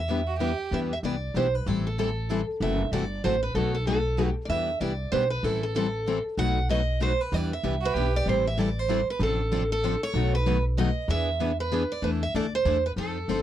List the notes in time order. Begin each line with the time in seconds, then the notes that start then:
Already playing: E2
0.00 E5
0.08 E3 G3 B3 D4 E4 G4 B4
0.28 F#4
0.40 E3 G3 B3 D4 E4 G4 B4
0.71 E2 E3 G3 B3 D4 E4 G4 B4 E5
0.93 E5
1.03 C2 E3 G3 B3 D4 E4 G4 B4 D5
1.34 B1 E3 G3 B3 D4 E4 G4 B4 C5
1.55 B4
1.66 A1 E3 G3 C4 E4 A4
1.87 A4
1.98 E3 G3 C4 E4 A4
2.29 E3 G3 C4 E4 A4
2.60 F#1 C3 E3 F#3 A3 C4 E4 F#4 A4 E5
2.92 G1 C3 E3 F#3 A3 C4 E4 F#4 A4 D5
3.24 A1 C3 E3 F#3 A3 C4 E4 F#4 A4 C5
3.43 B4
3.55 B1 B2 F#3 A3 D#4 F#4 A4 B4
3.75 A4
3.87 B2 F#3 A3 D#4 F#4 A4 B4
4.17 B2 F#3 A3 D#4 F#4 B4
4.45 E2 D5
4.49 E3 G3 B3 D4 E4 G4 B4 E5
4.81 C2 E3 G3 B3 D4 E4 G4 B4 D5
5.12 B1 E3 G3 B3 D4 E4 G4 B4 C5
5.30 B4
5.43 A1 E3 G3 C4 E4 A4
5.63 A4
5.75 E3 G3 C4 E4 A4
6.06 E3 G3 C4 E4 A4
6.37 B1 B2 F#3 A3 D#4 F#4 B4 F#5
6.69 B2 F#3 A3 D#4 F#4 B4 D#5
7.01 B2 F#3 A3 D#4 F#4 B4 C5
7.21 B4
7.32 E2 E3 G3 B3 D4 E4 G4 B4 D5
7.53 E5
7.63 C2 E3 G3 B3 D4 E4 G4 B4
7.81 F#4
7.85 B4
7.94 B1 E3 G3 B3 D4 E4 G4 B4
8.16 D5
8.26 A1 E3 G3 C4 E4 A4 C5
8.47 E5
8.58 E3 G3 C4 E4 A4 D5
8.79 C5
8.89 E3 G3 C4 E4 A4
9.10 B4
9.19 A1 C3 F3 C4 D4 A4
9.52 C3 F3 C4 D4 A4
9.72 A4
9.83 C3 F3 C4 D4 A4
10.03 C#5
10.14 B1 B2 D#3 F#3 A3 B3 D#4 F#4 A4
10.35 B4
10.46 B2 D#3 F#3 A3 B3 D#4 F#4 A4
10.77 B2 D#3 F#3 A3 B3 D#4 F#4 A4 D#5
11.08 E2 E3 B3 D4 G#4 B4 E5
11.40 E3 B3 D4 G#4 B4
11.60 B4
11.72 E3 B3 D4 G#4 B4
11.92 D5
12.02 E2 E3 A3 D4 E4 A4 B4
12.23 E5
12.34 D2 E3 A3 D4 E4 A4 D5
12.55 C5
12.65 E2 E3 A3 D4 E4 A4
12.86 B4
12.96 F2 F3 C4 D#4 A4
13.28 G1 F3 C4 D#4 A4